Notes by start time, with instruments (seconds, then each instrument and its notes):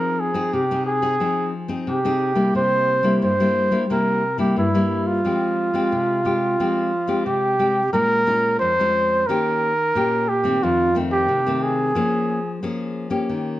Already playing: nylon-string guitar F3 C4 D#4 G#4, trumpet A#4
0.20 trumpet G#4
0.34 nylon-string guitar C4 D#4 G#4
0.53 nylon-string guitar C3, trumpet G4
0.71 nylon-string guitar C4 D#4 G#4
0.87 trumpet G#4
1.02 nylon-string guitar C4 D#4 G#4
1.20 nylon-string guitar F3 C4 D#4 G#4
1.68 nylon-string guitar C4 D#4 G#4
1.87 nylon-string guitar C3, trumpet G4
2.05 nylon-string guitar C4 D#4 G#4
2.35 nylon-string guitar G3 A#3 E4
2.55 nylon-string guitar C3, trumpet C5
3.03 nylon-string guitar G3 A#3 E4
3.22 nylon-string guitar G2, trumpet C5
3.40 nylon-string guitar G3 A#3 E4
3.71 nylon-string guitar G3 A#3 E4
3.90 nylon-string guitar C3 G3 A#3 E4, trumpet A#4
4.38 nylon-string guitar G3 A#3 E4, trumpet G4
4.57 nylon-string guitar G2, trumpet E4
4.74 nylon-string guitar G3 A#3 E4
5.07 trumpet F4
5.25 nylon-string guitar F3 G#3 C4 G4
5.74 nylon-string guitar G#3 C4 G4
5.92 nylon-string guitar C3
6.25 nylon-string guitar G#3 C4 G4
6.60 nylon-string guitar F3 G#3 C4 G4
7.07 nylon-string guitar G#3 C4 G4
7.26 nylon-string guitar C3, trumpet G4
7.59 nylon-string guitar G#3 C4 G4
7.93 nylon-string guitar A#2 G#3 C#4 F4, trumpet A#4
8.26 nylon-string guitar G#3 C#4 F4
8.60 nylon-string guitar F2, trumpet C5
8.79 nylon-string guitar G#3 C#4 F4
9.27 nylon-string guitar D#3 A#3 C#4 G4, trumpet A#4
9.95 nylon-string guitar A#2 A#3 C#4 G4
10.29 trumpet G4
10.44 nylon-string guitar D#3 A3 C4
10.63 nylon-string guitar F2, trumpet F4
10.95 nylon-string guitar D#3 A3 C4
11.12 trumpet G4
11.28 nylon-string guitar C3
11.46 nylon-string guitar D#3 A3 C4
11.63 trumpet G#4
11.95 nylon-string guitar F3 A#3 C#4 G#4
12.63 nylon-string guitar F3 A#3 C#4 G#4
13.10 nylon-string guitar A#3 C#4 G4
13.29 nylon-string guitar D#3